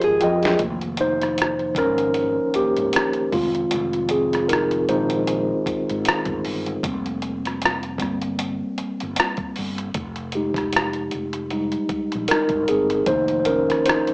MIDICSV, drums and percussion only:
0, 0, Header, 1, 2, 480
1, 0, Start_track
1, 0, Key_signature, -4, "minor"
1, 0, Tempo, 779221
1, 370, Time_signature, 4, 2, 24, 8
1, 8708, End_track
2, 0, Start_track
2, 0, Title_t, "Drums"
2, 10, Note_on_c, 9, 42, 30
2, 72, Note_off_c, 9, 42, 0
2, 128, Note_on_c, 9, 42, 57
2, 189, Note_off_c, 9, 42, 0
2, 263, Note_on_c, 9, 42, 33
2, 279, Note_on_c, 9, 38, 67
2, 325, Note_off_c, 9, 42, 0
2, 340, Note_off_c, 9, 38, 0
2, 364, Note_on_c, 9, 42, 72
2, 367, Note_on_c, 9, 36, 102
2, 426, Note_off_c, 9, 42, 0
2, 428, Note_off_c, 9, 36, 0
2, 502, Note_on_c, 9, 42, 32
2, 563, Note_off_c, 9, 42, 0
2, 599, Note_on_c, 9, 42, 58
2, 661, Note_off_c, 9, 42, 0
2, 749, Note_on_c, 9, 42, 39
2, 759, Note_on_c, 9, 37, 31
2, 810, Note_off_c, 9, 42, 0
2, 821, Note_off_c, 9, 37, 0
2, 850, Note_on_c, 9, 42, 73
2, 873, Note_on_c, 9, 37, 87
2, 911, Note_off_c, 9, 42, 0
2, 935, Note_off_c, 9, 37, 0
2, 982, Note_on_c, 9, 42, 32
2, 1044, Note_off_c, 9, 42, 0
2, 1078, Note_on_c, 9, 36, 72
2, 1085, Note_on_c, 9, 42, 58
2, 1101, Note_on_c, 9, 37, 27
2, 1139, Note_off_c, 9, 36, 0
2, 1146, Note_off_c, 9, 42, 0
2, 1163, Note_off_c, 9, 37, 0
2, 1220, Note_on_c, 9, 42, 43
2, 1281, Note_off_c, 9, 42, 0
2, 1320, Note_on_c, 9, 42, 77
2, 1381, Note_off_c, 9, 42, 0
2, 1564, Note_on_c, 9, 42, 47
2, 1626, Note_off_c, 9, 42, 0
2, 1704, Note_on_c, 9, 42, 36
2, 1766, Note_off_c, 9, 42, 0
2, 1805, Note_on_c, 9, 42, 76
2, 1826, Note_on_c, 9, 37, 115
2, 1866, Note_off_c, 9, 42, 0
2, 1887, Note_off_c, 9, 37, 0
2, 1931, Note_on_c, 9, 42, 29
2, 1992, Note_off_c, 9, 42, 0
2, 2048, Note_on_c, 9, 36, 94
2, 2048, Note_on_c, 9, 46, 44
2, 2109, Note_off_c, 9, 46, 0
2, 2110, Note_off_c, 9, 36, 0
2, 2185, Note_on_c, 9, 42, 34
2, 2246, Note_off_c, 9, 42, 0
2, 2284, Note_on_c, 9, 42, 75
2, 2346, Note_off_c, 9, 42, 0
2, 2422, Note_on_c, 9, 42, 32
2, 2484, Note_off_c, 9, 42, 0
2, 2517, Note_on_c, 9, 42, 61
2, 2579, Note_off_c, 9, 42, 0
2, 2668, Note_on_c, 9, 42, 42
2, 2678, Note_on_c, 9, 37, 35
2, 2729, Note_off_c, 9, 42, 0
2, 2740, Note_off_c, 9, 37, 0
2, 2767, Note_on_c, 9, 42, 72
2, 2791, Note_on_c, 9, 37, 85
2, 2829, Note_off_c, 9, 42, 0
2, 2853, Note_off_c, 9, 37, 0
2, 2902, Note_on_c, 9, 42, 34
2, 2964, Note_off_c, 9, 42, 0
2, 3010, Note_on_c, 9, 42, 48
2, 3072, Note_off_c, 9, 42, 0
2, 3140, Note_on_c, 9, 42, 43
2, 3202, Note_off_c, 9, 42, 0
2, 3248, Note_on_c, 9, 42, 77
2, 3310, Note_off_c, 9, 42, 0
2, 3487, Note_on_c, 9, 36, 74
2, 3491, Note_on_c, 9, 42, 53
2, 3549, Note_off_c, 9, 36, 0
2, 3553, Note_off_c, 9, 42, 0
2, 3631, Note_on_c, 9, 42, 35
2, 3693, Note_off_c, 9, 42, 0
2, 3727, Note_on_c, 9, 42, 82
2, 3748, Note_on_c, 9, 37, 112
2, 3789, Note_off_c, 9, 42, 0
2, 3810, Note_off_c, 9, 37, 0
2, 3852, Note_on_c, 9, 42, 34
2, 3856, Note_on_c, 9, 36, 72
2, 3914, Note_off_c, 9, 42, 0
2, 3918, Note_off_c, 9, 36, 0
2, 3970, Note_on_c, 9, 46, 44
2, 4032, Note_off_c, 9, 46, 0
2, 4104, Note_on_c, 9, 42, 34
2, 4166, Note_off_c, 9, 42, 0
2, 4208, Note_on_c, 9, 36, 95
2, 4212, Note_on_c, 9, 42, 77
2, 4270, Note_off_c, 9, 36, 0
2, 4274, Note_off_c, 9, 42, 0
2, 4347, Note_on_c, 9, 42, 33
2, 4409, Note_off_c, 9, 42, 0
2, 4448, Note_on_c, 9, 42, 53
2, 4510, Note_off_c, 9, 42, 0
2, 4593, Note_on_c, 9, 42, 44
2, 4603, Note_on_c, 9, 37, 35
2, 4655, Note_off_c, 9, 42, 0
2, 4665, Note_off_c, 9, 37, 0
2, 4693, Note_on_c, 9, 42, 65
2, 4717, Note_on_c, 9, 37, 86
2, 4755, Note_off_c, 9, 42, 0
2, 4778, Note_off_c, 9, 37, 0
2, 4824, Note_on_c, 9, 42, 31
2, 4886, Note_off_c, 9, 42, 0
2, 4918, Note_on_c, 9, 36, 76
2, 4926, Note_on_c, 9, 42, 54
2, 4943, Note_on_c, 9, 37, 30
2, 4980, Note_off_c, 9, 36, 0
2, 4988, Note_off_c, 9, 42, 0
2, 5004, Note_off_c, 9, 37, 0
2, 5061, Note_on_c, 9, 42, 40
2, 5123, Note_off_c, 9, 42, 0
2, 5168, Note_on_c, 9, 42, 72
2, 5229, Note_off_c, 9, 42, 0
2, 5408, Note_on_c, 9, 42, 54
2, 5470, Note_off_c, 9, 42, 0
2, 5547, Note_on_c, 9, 42, 36
2, 5608, Note_off_c, 9, 42, 0
2, 5645, Note_on_c, 9, 42, 77
2, 5666, Note_on_c, 9, 37, 105
2, 5707, Note_off_c, 9, 42, 0
2, 5728, Note_off_c, 9, 37, 0
2, 5772, Note_on_c, 9, 42, 28
2, 5777, Note_on_c, 9, 36, 83
2, 5834, Note_off_c, 9, 42, 0
2, 5838, Note_off_c, 9, 36, 0
2, 5887, Note_on_c, 9, 46, 41
2, 5949, Note_off_c, 9, 46, 0
2, 6025, Note_on_c, 9, 42, 36
2, 6087, Note_off_c, 9, 42, 0
2, 6125, Note_on_c, 9, 42, 70
2, 6127, Note_on_c, 9, 36, 102
2, 6186, Note_off_c, 9, 42, 0
2, 6189, Note_off_c, 9, 36, 0
2, 6257, Note_on_c, 9, 42, 33
2, 6318, Note_off_c, 9, 42, 0
2, 6358, Note_on_c, 9, 42, 54
2, 6419, Note_off_c, 9, 42, 0
2, 6495, Note_on_c, 9, 36, 82
2, 6507, Note_on_c, 9, 42, 42
2, 6517, Note_on_c, 9, 37, 36
2, 6556, Note_off_c, 9, 36, 0
2, 6568, Note_off_c, 9, 42, 0
2, 6579, Note_off_c, 9, 37, 0
2, 6607, Note_on_c, 9, 42, 70
2, 6631, Note_on_c, 9, 37, 97
2, 6668, Note_off_c, 9, 42, 0
2, 6692, Note_off_c, 9, 37, 0
2, 6735, Note_on_c, 9, 42, 31
2, 6796, Note_off_c, 9, 42, 0
2, 6845, Note_on_c, 9, 42, 47
2, 6907, Note_off_c, 9, 42, 0
2, 6979, Note_on_c, 9, 42, 41
2, 7041, Note_off_c, 9, 42, 0
2, 7087, Note_on_c, 9, 42, 75
2, 7148, Note_off_c, 9, 42, 0
2, 7218, Note_on_c, 9, 42, 34
2, 7280, Note_off_c, 9, 42, 0
2, 7326, Note_on_c, 9, 36, 69
2, 7326, Note_on_c, 9, 42, 45
2, 7388, Note_off_c, 9, 36, 0
2, 7388, Note_off_c, 9, 42, 0
2, 7466, Note_on_c, 9, 42, 35
2, 7527, Note_off_c, 9, 42, 0
2, 7564, Note_on_c, 9, 42, 77
2, 7585, Note_on_c, 9, 37, 109
2, 7626, Note_off_c, 9, 42, 0
2, 7647, Note_off_c, 9, 37, 0
2, 7693, Note_on_c, 9, 42, 32
2, 7697, Note_on_c, 9, 36, 69
2, 7754, Note_off_c, 9, 42, 0
2, 7759, Note_off_c, 9, 36, 0
2, 7810, Note_on_c, 9, 42, 63
2, 7871, Note_off_c, 9, 42, 0
2, 7945, Note_on_c, 9, 42, 35
2, 8007, Note_off_c, 9, 42, 0
2, 8046, Note_on_c, 9, 42, 82
2, 8048, Note_on_c, 9, 36, 106
2, 8108, Note_off_c, 9, 42, 0
2, 8109, Note_off_c, 9, 36, 0
2, 8181, Note_on_c, 9, 42, 34
2, 8243, Note_off_c, 9, 42, 0
2, 8285, Note_on_c, 9, 42, 57
2, 8347, Note_off_c, 9, 42, 0
2, 8438, Note_on_c, 9, 42, 44
2, 8448, Note_on_c, 9, 37, 36
2, 8499, Note_off_c, 9, 42, 0
2, 8510, Note_off_c, 9, 37, 0
2, 8534, Note_on_c, 9, 42, 76
2, 8558, Note_on_c, 9, 37, 103
2, 8596, Note_off_c, 9, 42, 0
2, 8620, Note_off_c, 9, 37, 0
2, 8668, Note_on_c, 9, 42, 32
2, 8708, Note_off_c, 9, 42, 0
2, 8708, End_track
0, 0, End_of_file